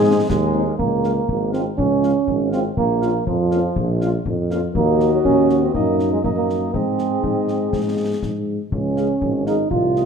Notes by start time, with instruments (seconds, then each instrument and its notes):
Already playing: tuba G#2, euphonium G#3, cornet G#4, piccolo G#5
0.05 french horn section G#3 C4 D#4, trombone section G#3
0.29 tuba D#2, trombone section G#3, euphonium G#3, concert bass drum, snare
0.54 french horn section G#3 C4 D#4
0.67 trombone section A#3
0.78 tuba C#2, euphonium A#3, concert bass drum
1.04 french horn section G#3 C#4 F4, cornet F5, snare
1.29 tuba G#1, concert bass drum
1.53 french horn section G#3 C#4 F4, euphonium C4, cornet F5, snare
1.77 tuba C#2, euphonium C#4, concert bass drum
2.03 french horn section G#3 C#4 F4, cornet F5, snare
2.27 tuba G#1, concert bass drum
2.52 french horn section G#3 C#4 F4, euphonium C4, cornet F5, snare
2.77 tuba A#1, euphonium A#3, concert bass drum
3.01 french horn section A#3 C#4 F4, cornet F5, snare
3.27 tuba F2, euphonium F3, concert bass drum
3.51 french horn section A#3 C#4 F4, cornet F5, snare
3.76 tuba A#1, concert bass drum
4.00 french horn section A#3 C#4 F4, cornet F5, snare
4.26 tuba F2, concert bass drum
4.50 french horn section A#3 C#4 F4, cornet F5, snare
4.74 tuba D#2, french horn section A#3 D#4 F#4, euphonium A#3, cornet D#5, concert bass drum
5.00 snare
5.13 euphonium F#3
5.25 tuba D#2, euphonium C#4, concert bass drum
5.50 snare
5.63 euphonium C4
5.74 tuba F#2, french horn section A#3 D#4, euphonium A#3, cornet D#5, concert bass drum
6.00 snare
6.12 euphonium G#3
6.24 tuba F#2, euphonium A#3, french horn section A#3 D#4, cornet D#5, concert bass drum
6.36 euphonium A#3
6.50 snare
6.74 tuba G#2, french horn section G#3 D#4 G#4, euphonium C4, cornet D#5, concert bass drum
6.99 snare
7.23 tuba G#2, concert bass drum
7.48 snare
7.72 tuba G#2, concert bass drum, snare
8.22 tuba G#2, concert bass drum, snare
8.72 tuba C#2, euphonium C#4, concert bass drum
8.97 french horn section G#3 C#4 G#4, cornet F5, snare
9.21 tuba G#1, concert bass drum
9.46 french horn section G#3 C#4 G#4, euphonium D#4, cornet F5, snare
9.71 tuba C2, euphonium F4, concert bass drum
9.96 french horn section A3 D#4 F#4, cornet D#5, snare